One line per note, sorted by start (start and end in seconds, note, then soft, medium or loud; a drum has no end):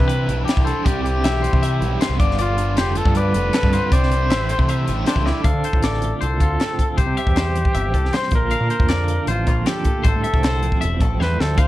0.00 0.45 C3 medium
0.00 0.30 C3 medium
0.00 0.84 E3 medium
0.00 0.30 G3 medium
0.00 0.28 C4 medium
0.00 0.29 D4 soft
0.00 0.25 E4 medium
0.00 0.42 B4 medium
0.08 0.85 E4 medium
0.08 0.45 B4 medium
0.08 closed hi-hat medium
0.26 0.44 B1 medium
0.26 0.84 G2 medium
0.26 0.47 G3 medium
0.26 0.48 C4 medium
0.26 0.48 E4 medium
0.26 closed hi-hat medium
0.30 0.67 D4 medium
0.45 0.83 C3 medium
0.45 0.68 G3 medium
0.45 0.67 C4 medium
0.45 0.65 E4 medium
0.45 0.65 G4 medium
0.45 snare medium
0.45 closed hi-hat medium
0.57 0.72 C2 medium
0.57 kick medium
0.65 0.85 G3 medium
0.65 0.86 C4 medium
0.65 0.89 D4 medium
0.65 0.86 E4 medium
0.65 0.86 A4 medium
0.65 0.85 C5 medium
0.65 closed hi-hat medium
0.84 1.24 C2 medium
0.84 1.22 C3 medium
0.84 1.24 C3 medium
0.84 1.07 G3 medium
0.84 1.06 C4 medium
0.84 1.63 E4 medium
0.84 1.03 E4 loud
0.84 1.03 G4 medium
0.84 1.24 D5 medium
0.84 kick loud
0.84 closed hi-hat medium
1.03 1.16 B3 medium
1.03 1.24 C4 medium
1.03 1.25 E4 medium
1.03 2.15 G4 loud
1.03 closed hi-hat soft
1.08 1.24 G3 medium
1.16 1.82 D4 soft
1.23 1.47 B1 medium
1.23 1.98 C3 medium
1.23 2.18 E3 medium
1.23 1.84 G3 medium
1.23 1.82 C4 medium
1.23 1.79 E4 medium
1.23 1.43 E5 medium
1.23 snare loud
1.23 closed hi-hat medium
1.42 1.62 C5 medium
1.42 closed hi-hat medium
1.53 1.82 C3 medium
1.53 kick medium
1.62 2.21 E4 medium
1.62 2.01 E5 medium
1.62 closed hi-hat medium
1.80 1.96 B1 medium
1.80 2.18 G2 medium
1.80 2.00 G3 medium
1.80 2.01 C4 medium
1.80 3.54 D4 soft
1.80 2.01 E4 medium
1.80 closed hi-hat medium
1.99 2.18 C3 medium
1.99 2.20 G3 medium
1.99 2.18 B3 medium
1.99 2.19 C4 medium
1.99 2.18 E4 medium
1.99 2.19 C5 medium
1.99 snare medium
1.99 closed hi-hat medium
2.10 2.17 C2 medium
2.18 2.77 G1 medium
2.18 3.14 G2 medium
2.18 2.38 G2 medium
2.18 2.39 D3 medium
2.18 2.39 F3 medium
2.18 2.40 B3 medium
2.18 2.41 F4 medium
2.18 2.96 F4 medium
2.18 2.38 D5 medium
2.18 kick medium
2.18 closed hi-hat medium
2.31 snare soft
2.39 2.77 G2 medium
2.39 2.75 D3 medium
2.39 2.59 F3 medium
2.39 2.58 B3 loud
2.39 2.76 F4 medium
2.39 2.56 F4 medium
2.39 2.77 D5 medium
2.39 closed hi-hat medium
2.57 4.29 D3 medium
2.57 2.76 F3 soft
2.57 2.78 B3 medium
2.57 2.79 F4 medium
2.57 closed hi-hat medium
2.76 3.00 F1 medium
2.76 3.53 D3 medium
2.76 3.36 F3 medium
2.76 3.34 A3 medium
2.76 3.35 B3 medium
2.76 3.33 F4 medium
2.76 2.99 G4 medium
2.76 2.97 C5 medium
2.76 snare loud
2.76 closed hi-hat medium
2.95 3.71 F4 medium
2.95 3.15 A4 medium
2.95 3.18 A4 medium
2.95 closed hi-hat medium
3.05 3.35 G2 medium
3.05 kick medium
3.15 3.70 G2 medium
3.15 3.94 B4 loud
3.15 3.54 D5 medium
3.15 closed hi-hat medium
3.34 3.49 F1 medium
3.34 3.54 F3 medium
3.34 3.75 A3 medium
3.34 3.55 B3 medium
3.34 3.56 F4 medium
3.34 closed hi-hat medium
3.53 3.90 G2 medium
3.53 3.90 D3 medium
3.53 3.75 F3 medium
3.53 3.73 B3 medium
3.53 4.10 C4 medium
3.53 3.71 F4 medium
3.53 3.72 A4 medium
3.53 snare medium
3.53 closed hi-hat medium
3.63 3.79 G2 medium
3.63 kick medium
3.72 3.89 G2 medium
3.72 3.91 B3 medium
3.72 3.90 F4 medium
3.72 3.89 F4 medium
3.72 3.92 C5 medium
3.72 closed hi-hat medium
3.76 3.92 F3 medium
3.91 4.30 C2 medium
3.91 4.29 C3 medium
3.91 4.31 C3 medium
3.91 4.28 G3 medium
3.91 4.12 C4 medium
3.91 4.69 E4 medium
3.91 4.11 E4 medium
3.91 4.09 G4 medium
3.91 5.07 C5 loud
3.91 4.30 D5 medium
3.91 kick loud
3.91 closed hi-hat medium
4.03 snare soft
4.10 4.21 B3 medium
4.10 4.30 C4 medium
4.10 4.31 E4 medium
4.10 4.31 G4 medium
4.10 closed hi-hat medium
4.21 4.88 D4 soft
4.29 4.53 A1 medium
4.29 5.43 E3 medium
4.29 5.04 G3 medium
4.29 4.88 C4 medium
4.29 4.86 E4 medium
4.29 4.85 G4 medium
4.29 4.49 E5 medium
4.29 snare medium
4.29 closed hi-hat medium
4.49 5.07 A3 medium
4.49 4.69 C5 medium
4.49 closed hi-hat medium
4.58 4.90 C3 medium
4.58 kick medium
4.69 5.45 E4 medium
4.69 5.07 E5 medium
4.69 closed hi-hat medium
4.86 5.03 A1 medium
4.86 5.43 G2 medium
4.86 4.98 B3 soft
4.86 5.06 C4 medium
4.86 5.06 E4 medium
4.86 5.07 G4 medium
4.86 closed hi-hat medium
4.98 5.26 D4 soft
5.05 5.43 C3 medium
5.05 5.43 G3 medium
5.05 5.43 A3 medium
5.05 5.27 C4 medium
5.05 5.16 D4 medium
5.05 5.25 E4 medium
5.05 5.24 G4 medium
5.05 5.26 C5 medium
5.05 snare medium
5.05 closed hi-hat medium
5.16 5.31 C#2 medium
5.16 kick medium
5.25 5.45 C4 medium
5.25 5.43 D4 medium
5.25 5.43 E4 medium
5.25 5.44 E4 medium
5.25 5.43 G4 medium
5.25 5.45 D5 medium
5.25 snare medium
5.44 5.52 D2 medium
5.44 6.98 D3 medium
5.44 6.60 C4 medium
5.44 6.17 A4 medium
5.44 5.64 F5 medium
5.44 kick loud
5.44 closed hi-hat medium
5.54 5.62 D3 medium
5.64 5.84 F4 medium
5.64 5.83 C5 medium
5.64 closed hi-hat medium
5.73 6.12 A1 medium
5.73 kick medium
5.83 6.03 F4 medium
5.83 6.22 D5 medium
5.83 snare medium
5.83 closed hi-hat medium
5.94 snare soft
6.02 7.00 A3 medium
6.02 6.21 F4 medium
6.02 closed hi-hat medium
6.21 6.41 C2 medium
6.21 6.41 F4 medium
6.21 6.91 A4 medium
6.21 6.40 C5 medium
6.21 closed hi-hat medium
6.40 6.56 D2 medium
6.40 6.99 A2 medium
6.40 6.60 F4 medium
6.40 6.80 F4 medium
6.40 kick medium
6.40 closed hi-hat medium
6.60 6.97 C4 soft
6.60 6.98 A4 medium
6.60 snare medium
6.60 closed hi-hat medium
6.79 6.97 F4 medium
6.79 kick medium
6.79 closed hi-hat medium
6.91 6.98 A4 medium
6.97 7.06 C2 medium
6.97 7.56 C3 medium
6.97 8.14 G3 soft
6.97 8.18 G4 medium
6.97 7.17 C5 medium
6.97 kick loud
6.97 closed hi-hat medium
7.06 7.15 C3 medium
7.17 7.37 C4 medium
7.17 7.36 E5 medium
7.17 closed hi-hat medium
7.27 7.65 E2 medium
7.27 kick medium
7.36 7.75 C5 medium
7.36 snare medium
7.36 closed hi-hat medium
7.55 8.31 E3 medium
7.55 7.76 C4 soft
7.55 closed hi-hat medium
7.65 kick medium
7.75 7.94 G1 medium
7.75 7.95 C4 medium
7.75 7.94 E5 medium
7.75 closed hi-hat medium
7.94 8.09 C2 medium
7.94 8.31 C3 medium
7.94 8.31 C4 soft
7.94 8.13 A4 medium
7.94 kick medium
7.94 closed hi-hat soft
8.05 snare soft
8.13 8.33 G3 medium
8.13 8.51 C5 medium
8.13 8.34 C5 medium
8.13 snare medium
8.13 closed hi-hat medium
8.23 snare soft
8.31 8.55 A#1 medium
8.31 8.91 A#2 medium
8.31 8.88 D3 medium
8.31 kick medium
8.31 closed hi-hat medium
8.35 9.47 A#3 soft
8.35 8.51 D4 soft
8.35 8.71 F4 medium
8.35 9.26 A#4 medium
8.51 8.89 D4 medium
8.51 8.70 F5 medium
8.51 closed hi-hat medium
8.61 8.68 A#2 medium
8.70 9.10 F4 medium
8.70 8.88 C5 medium
8.70 closed hi-hat medium
8.80 9.18 F2 medium
8.80 kick medium
8.89 10.62 D3 medium
8.89 9.28 D4 medium
8.89 9.28 D5 medium
8.89 snare medium
8.89 closed hi-hat medium
9.08 10.09 F4 medium
9.08 closed hi-hat medium
9.27 9.47 A1 medium
9.27 9.83 F2 medium
9.27 9.67 D4 medium
9.27 9.68 F4 medium
9.27 9.47 C5 medium
9.27 closed hi-hat medium
9.47 9.62 A#1 medium
9.47 9.84 A#3 soft
9.47 9.66 F4 medium
9.47 kick medium
9.47 closed hi-hat medium
9.66 9.84 D4 medium
9.66 10.05 G4 medium
9.66 10.05 A4 medium
9.66 snare medium
9.66 closed hi-hat medium
9.85 10.03 A#2 medium
9.85 10.06 A3 medium
9.85 kick medium
9.85 closed hi-hat medium
10.04 10.13 A1 medium
10.04 11.01 A2 medium
10.04 11.19 G3 medium
10.04 10.23 C5 medium
10.04 kick loud
10.04 closed hi-hat medium
10.08 10.90 A4 medium
10.15 10.22 A2 medium
10.24 10.63 C4 medium
10.24 10.42 E5 medium
10.24 closed hi-hat medium
10.34 10.72 C2 medium
10.34 kick medium
10.42 10.82 E4 medium
10.42 10.81 C5 medium
10.42 snare loud
10.42 closed hi-hat medium
10.63 11.56 F3 medium
10.63 11.03 C4 medium
10.63 closed hi-hat medium
10.72 kick medium
10.81 11.01 E1 medium
10.81 11.59 E4 medium
10.81 11.00 E5 medium
10.81 closed hi-hat medium
11.00 11.16 A1 medium
11.00 11.59 A2 medium
11.00 11.39 C4 soft
11.00 11.20 A4 medium
11.00 kick medium
11.00 closed hi-hat soft
11.20 11.37 E2 medium
11.20 11.58 G3 medium
11.20 11.42 B4 medium
11.20 11.58 C5 medium
11.20 snare soft
11.39 11.57 D2 medium
11.39 11.58 C4 medium
11.39 11.61 A4 medium
11.39 snare medium
11.57 11.66 D2 medium
11.57 11.68 D3 medium
11.57 11.68 A3 soft
11.57 11.68 C4 medium
11.57 11.68 F4 medium
11.57 11.68 C5 medium
11.57 11.68 F5 medium
11.57 kick loud
11.57 closed hi-hat medium